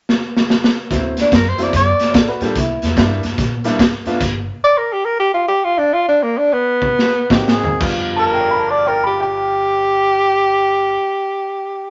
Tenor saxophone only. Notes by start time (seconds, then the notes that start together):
1.21 D4
1.35 A#4
1.49 C5
1.63 D5
1.76 D5
4.64 D5
4.78 A#4
4.92 G4
5.05 A#4
5.19 G4
5.34 F4
5.48 G4
5.64 F4
5.78 D4
5.93 F4
6.08 D4
6.23 A#3
6.38 D4
6.53 B3
7.34 G4
7.50 G#4
8.19 A#4
8.71 D5
8.88 A#4
9.06 G4
9.22 G4